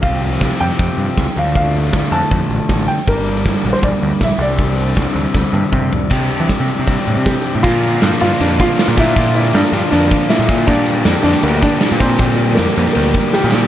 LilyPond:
<<
  \new Staff \with { instrumentName = "Transistor combo organ" } { \time 4/4 \key c \mixolydian \tempo 4 = 158 << { r1 | r1 | r1 | r1 |
r1 | bes''1~ | bes''1 | g''1~ |
g''1 | } \\ { r1 | r1 | r1 | r1 |
r1 | <f bes' d''>1~ | <f bes' d''>1~ | <f bes' d''>1~ |
<f bes' d''>1 | } >> }
  \new Staff \with { instrumentName = "Upright piano" } { \time 4/4 \key c \mixolydian f''4. g''2 f''8 | f''4. a''2 g''8 | bes'4~ \tuplet 3/2 { bes'8. r16 c''8 } d''4 e''8 d''8~ | d''2. r4 |
r2. g'4 | f'4. f'8 d'8 f'4 e'8~ | e'8 e'8 d'4 d'4 e'4 | d'4. d'8 bes8 d'4 c'8~ |
c'4 bes4 bes4 g'4 | }
  \new Staff \with { instrumentName = "Overdriven electric guitar" } { \time 4/4 \key c \mixolydian <f c' f' g'>2.~ <f c' f' g'>8 <f a d'>8~ | <f a d'>1 | <g bes d'>2.~ <g bes d'>8 <g c' d'>8~ | <g c' d'>1 |
<c' d' g'>2 <c' d' g'>2 | <f bes d' f'>4 <f bes d' f'>8 <f bes d' f'>8 <f bes d' f'>4 <f bes d' f'>8 <f bes d' f'>8 | <f bes d' f'>4 <f bes d' f'>8 <f bes d' f'>8 <f bes d' f'>4 <f bes d' f'>8 <f bes d' f'>8 | <bes d' g'>4 <bes d' g'>8 <bes d' g'>8 <bes d' g'>4 <bes d' g'>8 <bes d' g'>8 |
<bes d' g'>4 <bes d' g'>8 <bes d' g'>8 <bes d' g'>4 <bes d' g'>8 <bes d' g'>8 | }
  \new Staff \with { instrumentName = "Overdriven electric guitar" } { \clef bass \time 4/4 \key c \mixolydian <c f c' f' g'>2.~ <c f c' f' g'>8 <d f a d'>8~ | <d f a d'>1 | <g, d g bes d'>2.~ <g, d g bes d'>8 <c g c' d'>8~ | <c g c' d'>1 |
<c g c' d'>1 | <bes, d f bes d'>4 <bes, d f bes d'>8 <bes, d f bes d'>8 <bes, d f bes d'>4 <bes, d f bes d'>8 <bes, d f bes d'>8 | <bes, d f bes d'>4 <bes, d f bes d'>8 <bes, d f bes d'>8 <bes, d f bes d'>4 <bes, d f bes d'>8 <bes, d f bes d'>8 | <bes, d g bes d'>4 <bes, d g bes d'>8 <bes, d g bes d'>8 <bes, d g bes d'>4 <bes, d g bes d'>8 <bes, d g bes d'>8 |
<bes, d g bes d'>4 <bes, d g bes d'>8 <bes, d g bes d'>8 <bes, d g bes d'>4 <bes, d g bes d'>8 <bes, d g bes d'>8 | }
  \new Staff \with { instrumentName = "Picked electric bass" } { \clef bass \time 4/4 \key c \mixolydian c,4 c,16 r16 f,16 r16 f,16 r16 g,16 r16 cis,16 r16 d,8~ | d,4 d,16 r16 f,16 r16 f,16 r16 a,,16 r16 a,,8 r8 | g,,4 g,,16 r16 bes,,16 r16 bes,,16 r16 d,16 r16 bes,,16 r16 c,8~ | c,4 c,16 r16 d,16 r16 d,16 r16 g,16 r16 c8 r8 |
c8 r16 e16 r16 c16 r16 c8 r16 a,16 c8 r8 a,16 | bes,4 g,16 r16 g,16 r16 f,8 r8. bes,16 bes,8 | bes,4 g,16 r16 g,16 r16 f,8 r8. bes,16 bes,8 | bes,4 f,16 r16 f,16 r16 d,8 r8. bes,16 bes,8 |
bes,4 f,16 r16 f,16 r16 d,8 r8. bes,16 bes,8 | }
  \new DrumStaff \with { instrumentName = "Drums" } \drummode { \time 4/4 <hh bd>8 hh16 hh16 <hh bd sn>8 hh16 sn16 <hh bd>8 hh16 hh16 <hh bd sn>8 hh16 hh16 | <hh bd>8 hh16 hh16 <hh bd sn>8 hh16 hh16 <hh bd>8 hh8 <hh bd sn>8 hh16 hh16 | <hh bd>8 hh16 hh16 <hh bd sn>8 hh16 sn16 <hh bd>8 hh16 hh16 <hh bd sn>8 hh16 hh16 | <hh bd>8 hh16 hh16 <hh bd sn>8 hh16 hh16 <bd sn>8 tommh8 <bd toml>8 tomfh8 |
<cymc bd>8 hh8 <hh bd sn>8 hh8 <hh bd>16 sn16 hh8 <hh bd sn>8 hh8 | <cymc bd>8 cymr8 <cymr sn>8 cymr8 cymr8 <bd cymr>8 <cymr sn>8 <bd cymr>8 | <bd cymr>8 cymr8 <cymr sn>8 cymr8 cymr8 <bd cymr>8 <cymr sn>8 <bd cymr>8 | <bd cymr>8 cymr8 <cymr sn>8 cymr16 sn16 cymr8 <bd cymr>8 <cymr sn>8 <bd cymr>8 |
<bd cymr>8 cymr8 <cymr sn>8 cymr16 sn16 cymr8 <bd cymr>8 sn8 sn8 | }
>>